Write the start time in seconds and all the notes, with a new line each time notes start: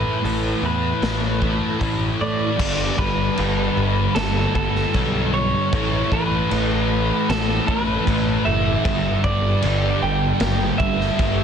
Already playing: A2 E3 A3 B4
0.22 A1 A2 E3 A3, open hi-hat
0.61 E2 E3 A3
0.66 B4
1.02 A1, snare, open hi-hat
1.40 E3 A3, kick
1.78 A1 A2 E3 A3, kick, open hi-hat
2.21 A2 D5
2.57 G1 G2 D3 G3, kick, crash
2.97 G1 D3 G3 B4, kick
3.35 G1 G2 D3 G3, crash
3.77 G1
4.15 G1 A4, snare, crash
4.55 G1 D3 G3 A4, kick
4.75 snare
4.93 B1 G2 D3 G3, kick, crash
5.33 D3 G3 C#5
5.72 A1 A2 E3 A3, kick, crash
6.11 A1 E3 A3 B4, kick
6.49 A1 A2 E3 A3, crash
7.29 A1 A4, snare, crash
7.67 A1 E3 A3 B4, kick
8.06 A1 A2 E3 A3, kick, crash
8.45 F#1 E3 A3 E5
8.85 G1 G2 D3 G3, kick, crash
9.23 G1 D3 G3 D5, kick
9.62 G1 G2 D3 G3, crash
10.02 G1 G5
10.40 G1, snare, crash
10.78 G1 G3 E5, kick
10.82 D3
11.01 snare
11.18 G1 G2 D3 G3, kick, crash